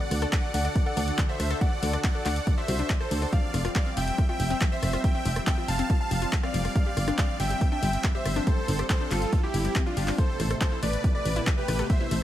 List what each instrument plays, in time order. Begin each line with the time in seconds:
Already playing: analog synth pad D3 D4 F#4 A4, supersaw synth D5 F#5, grand piano F#5
0.01 synth arpeggio sound D5
0.11 fm bass D2, cross-stick, open hi-hat
0.22 synth arpeggio sound A4, cross-stick, closed hi-hat
0.33 synth arpeggio sound D4, supersaw synth D5 F#5, grand piano F#5, kick, clap, closed hi-hat
0.54 fm bass D2, synth arpeggio sound D3, supersaw synth D5 F#5, grand piano F#5, open hi-hat
0.65 synth arpeggio sound D5, closed hi-hat
0.75 kick, closed hi-hat
0.86 synth arpeggio sound A4, supersaw synth D5 F#5, grand piano F#5
0.97 fm bass D2, synth arpeggio sound D4, open hi-hat
1.08 closed hi-hat
1.18 synth arpeggio sound D3, kick, clap, closed hi-hat
1.29 supersaw synth C5 E5, synth arpeggio sound D5, grand piano E5
1.40 fm bass D2, cross-stick, open hi-hat
1.50 synth arpeggio sound A4, cross-stick, closed hi-hat
1.61 synth arpeggio sound D4, supersaw synth D5 F#5, grand piano F#5, kick, closed hi-hat
1.83 fm bass D2, synth arpeggio sound D3, open hi-hat
1.93 synth arpeggio sound D5, cross-stick, closed hi-hat
2.04 supersaw synth D5 F#5, grand piano F#5, kick, clap, closed hi-hat
2.15 synth arpeggio sound A4
2.25 fm bass D2, synth arpeggio sound D4, supersaw synth D5 F#5, grand piano F#5, clap, open hi-hat
2.36 closed hi-hat
2.47 synth arpeggio sound D3, kick, closed hi-hat
2.58 supersaw synth C5 E5, synth arpeggio sound D5, grand piano E5
2.68 fm bass C2, synth arpeggio sound F#4, open hi-hat
2.79 synth arpeggio sound D4, closed hi-hat
2.90 synth arpeggio sound D5, kick, clap, closed hi-hat
3.00 supersaw synth A4 C5, grand piano C5, cross-stick
3.11 fm bass D2, synth arpeggio sound D4, open hi-hat
3.22 synth arpeggio sound D4, cross-stick, open hi-hat
3.33 analog synth pad F3 G3 C4, synth arpeggio sound F3, supersaw synth D5 F5, grand piano F5, kick, closed hi-hat
3.54 fm bass F1, synth arpeggio sound F2, cross-stick, open hi-hat
3.65 synth arpeggio sound F4, cross-stick, closed hi-hat
3.75 supersaw synth D5 F5, grand piano F5, kick, clap, closed hi-hat
3.86 synth arpeggio sound C4
3.97 fm bass F1, synth arpeggio sound F3, supersaw synth E5 G5, grand piano G5, open hi-hat
4.08 closed hi-hat
4.18 synth arpeggio sound F2, kick, closed hi-hat
4.29 synth arpeggio sound F4, supersaw synth E5 G5, grand piano G5
4.40 fm bass F1, open hi-hat
4.50 synth arpeggio sound C4, closed hi-hat
4.61 synth arpeggio sound F3, kick, clap, closed hi-hat
4.72 supersaw synth C5 E5, grand piano E5
4.83 fm bass F1, synth arpeggio sound F2, cross-stick, open hi-hat
4.93 synth arpeggio sound F4, cross-stick, closed hi-hat
5.04 supersaw synth E5 G5, grand piano G5, kick, closed hi-hat
5.15 synth arpeggio sound C4
5.25 fm bass F1, synth arpeggio sound F3, open hi-hat
5.36 cross-stick, closed hi-hat
5.47 synth arpeggio sound F2, supersaw synth E5 G5, grand piano G5, kick, clap, closed hi-hat
5.58 synth arpeggio sound F4
5.68 fm bass F1, supersaw synth F5 A5, grand piano A5, open hi-hat
5.79 synth arpeggio sound C4, closed hi-hat
5.90 synth arpeggio sound F3, kick, closed hi-hat
6.00 supersaw synth F5 A5, grand piano A5
6.11 fm bass F1, synth arpeggio sound F2, open hi-hat
6.22 synth arpeggio sound F4, closed hi-hat
6.33 kick, clap, closed hi-hat
6.43 synth arpeggio sound C4, supersaw synth D5 F5, grand piano F5, cross-stick
6.54 fm bass F1, synth arpeggio sound F3, open hi-hat
6.65 cross-stick, open hi-hat
6.75 synth arpeggio sound G2, analog synth pad C4, supersaw synth D5 F5, grand piano F5, kick, closed hi-hat
6.86 synth arpeggio sound G4
6.97 fm bass G1, cross-stick, open hi-hat
7.08 synth arpeggio sound D4, cross-stick, closed hi-hat
7.18 synth arpeggio sound G3, supersaw synth D5 F5, grand piano F5, kick, clap, closed hi-hat
7.40 fm bass G1, synth arpeggio sound G2, supersaw synth E5 G5, grand piano G5, open hi-hat
7.50 synth arpeggio sound G4, closed hi-hat
7.61 kick, closed hi-hat
7.72 synth arpeggio sound D4, supersaw synth E5 G5, grand piano G5
7.83 fm bass G1, synth arpeggio sound G3, open hi-hat
7.93 closed hi-hat
8.04 synth arpeggio sound G2, kick, clap, closed hi-hat
8.15 synth arpeggio sound G4, supersaw synth C5 E5, grand piano E5
8.25 fm bass G1, cross-stick, open hi-hat
8.36 synth arpeggio sound D4, cross-stick, closed hi-hat
8.47 synth arpeggio sound G3, supersaw synth A4 C5, grand piano C5, kick, closed hi-hat
8.68 fm bass G1, synth arpeggio sound G2, open hi-hat
8.79 synth arpeggio sound G4, cross-stick, closed hi-hat
8.90 supersaw synth A4 C5, grand piano C5, kick, clap, closed hi-hat
9.01 synth arpeggio sound D4
9.11 fm bass G1, synth arpeggio sound G3, supersaw synth F4 A4, grand piano A4, clap, open hi-hat
9.22 closed hi-hat
9.33 synth arpeggio sound G2, kick, closed hi-hat
9.43 supersaw synth E4 G4, grand piano G4, synth arpeggio sound G4
9.54 fm bass G1, open hi-hat
9.65 synth arpeggio sound G3, closed hi-hat
9.75 synth arpeggio sound C4, kick, clap, closed hi-hat
9.86 synth arpeggio sound G3, supersaw synth D4 F4, grand piano F4
9.97 fm bass G1, synth arpeggio sound G4, open hi-hat
10.08 synth arpeggio sound G3, clap, open hi-hat
10.18 analog synth pad B2 C3 A3, synth arpeggio sound A3, supersaw synth A4 C5, grand piano C5, kick, closed hi-hat
10.40 fm bass A1, synth arpeggio sound A2, cross-stick, open hi-hat
10.50 synth arpeggio sound A4, cross-stick, closed hi-hat
10.61 supersaw synth A4, grand piano C5, kick, clap, closed hi-hat
10.72 synth arpeggio sound E4
10.83 fm bass A1, synth arpeggio sound A3, supersaw synth B4 D5, grand piano D5, open hi-hat
10.93 closed hi-hat
11.04 synth arpeggio sound A2, kick, closed hi-hat
11.15 synth arpeggio sound A4, supersaw synth B4 D5, grand piano D5
11.25 fm bass A1, open hi-hat
11.36 synth arpeggio sound E4, closed hi-hat
11.47 synth arpeggio sound A3, kick, clap, closed hi-hat
11.58 supersaw synth G4 B4, grand piano B4
11.68 fm bass A1, synth arpeggio sound A2, cross-stick, open hi-hat
11.79 synth arpeggio sound A4, cross-stick, closed hi-hat
11.90 supersaw synth C5 E5, grand piano E5, kick, closed hi-hat
12.01 synth arpeggio sound E4
12.11 fm bass A1, synth arpeggio sound A3, open hi-hat